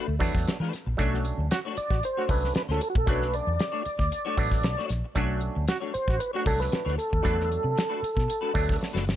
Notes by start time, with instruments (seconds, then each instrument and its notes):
Already playing: clean electric guitar A3
0.08 fingered electric bass D2, muted clean electric guitar stroke
0.19 fingered electric bass E2, clav F#3 A3 B3 D4, clean electric guitar A3 D4 F#4 B4, kick, open hi-hat
0.34 fingered electric bass E2, muted clean electric guitar stroke, kick, snare
0.46 muted clean electric guitar stroke, snare, closed hi-hat
0.60 fingered electric bass E3, clean electric guitar A3 D4 F#4 B4, snare
0.73 muted clean electric guitar stroke, snare, closed hi-hat
0.86 fingered electric bass A#1, muted clean electric guitar stroke
0.97 fingered electric bass B1, clav F#3 A3 C#4 D4, clean electric guitar A3 D4 F#4 C#5, kick, closed hi-hat
1.14 snare
1.25 closed hi-hat
1.38 fingered electric bass D2, muted clean electric guitar stroke
1.51 trombone F#4, muted clean electric guitar stroke, snare, closed hi-hat
1.65 clean electric guitar A3 D4 F#4 C#5
1.77 tonewheel organ D5, muted fingered electric bass stroke, muted clean electric guitar stroke, closed hi-hat
1.90 fingered electric bass A1, trombone F#4, muted clean electric guitar stroke, kick, snare
2.03 tonewheel organ C5, muted clean electric guitar stroke, closed hi-hat
2.17 clean electric guitar A3 D4 F#4 C#5, trombone F#4
2.29 fingered electric bass C2, clav F#3 A3 C#4 D4, tonewheel organ B4, muted clean electric guitar stroke, kick, open hi-hat
2.43 muted clean electric guitar stroke, snare
2.55 tonewheel organ B4, muted clean electric guitar stroke, snare, closed hi-hat
2.69 fingered electric bass D2, clean electric guitar A3 D4 F#4 C#5, tonewheel organ A4, snare
2.81 tonewheel organ A4, muted clean electric guitar stroke, closed hi-hat
2.90 tonewheel organ F#4
2.95 fingered electric bass A#1, tonewheel organ A4, muted clean electric guitar stroke, kick
3.06 fingered electric bass B1, clav F#3 A3 C#4 D4, clean electric guitar A3 D4 F#4 C#5, kick, closed hi-hat
3.10 tonewheel organ B4
3.22 snare
3.34 tonewheel organ D5, closed hi-hat
3.47 fingered electric bass E2, muted clean electric guitar stroke
3.59 muted clean electric guitar stroke, snare, closed hi-hat
3.72 clean electric guitar A3 D4 F#4 C#5
3.84 muted clean electric guitar stroke, muted fingered electric bass stroke, closed hi-hat
3.98 fingered electric bass D2, muted clean electric guitar stroke, kick, snare
4.11 muted clean electric guitar stroke, closed hi-hat
4.25 clean electric guitar A3 D4 F#4 C#5
4.37 fingered electric bass A1, clav F#3 A3 B3 D4, muted clean electric guitar stroke, kick, open hi-hat
4.51 muted clean electric guitar stroke, kick, snare
4.63 fingered electric bass B1, snare, closed hi-hat
4.77 clean electric guitar A3 D4 F#4 C#5, snare
4.89 fingered electric bass A#1, muted clean electric guitar stroke, snare, closed hi-hat
5.04 muted clean electric guitar stroke
5.15 fingered electric bass B1, clav F#3 A3 C#4 D4, clean electric guitar A3 D4 F#4 C#5, kick, closed hi-hat
5.41 closed hi-hat
5.55 fingered electric bass D2, muted clean electric guitar stroke
5.68 trombone F#4, muted clean electric guitar stroke, snare, closed hi-hat
5.80 clean electric guitar A3 D4 F#4 C#5
5.94 tonewheel organ C5, muted clean electric guitar stroke, muted fingered electric bass stroke, closed hi-hat
6.08 fingered electric bass A1, trombone F#4, muted clean electric guitar stroke, kick, snare
6.19 tonewheel organ B4, muted clean electric guitar stroke, closed hi-hat
6.33 clean electric guitar A3 D4 F#4 C#5, trombone F#4
6.45 fingered electric bass C2, clav F#3 A3 C#4 D4, tonewheel organ A4, kick, open hi-hat
6.59 tonewheel organ B4, muted clean electric guitar stroke, snare
6.71 muted clean electric guitar stroke, snare, closed hi-hat
6.85 fingered electric bass D2, clean electric guitar A3 D4 F#4 C#5, snare
6.97 tonewheel organ A4, muted clean electric guitar stroke, closed hi-hat
7.10 fingered electric bass D#2, muted clean electric guitar stroke, kick
7.22 fingered electric bass E2, clav F#3 A3 B3 D4, clean electric guitar A3 D4 F#4 B4, kick, closed hi-hat
7.40 snare
7.52 closed hi-hat
7.63 fingered electric bass C3, muted clean electric guitar stroke
7.75 muted clean electric guitar stroke, snare, closed hi-hat
7.89 clean electric guitar A3 D4 F#4 B4
8.02 muted clean electric guitar stroke, muted fingered electric bass stroke, closed hi-hat
8.16 fingered electric bass B2, muted clean electric guitar stroke, kick, snare
8.27 muted clean electric guitar stroke, closed hi-hat
8.41 clean electric guitar A3 D4 F#4 B4
8.53 fingered electric bass D2, clav F#3 A3 B3 D4, muted clean electric guitar stroke, kick, open hi-hat
8.68 muted clean electric guitar stroke, kick, snare
8.80 muted clean electric guitar stroke, snare
8.93 fingered electric bass F#1, clean electric guitar A3 D4 F#4 B4, snare
9.06 fingered electric bass G1, muted clean electric guitar stroke, snare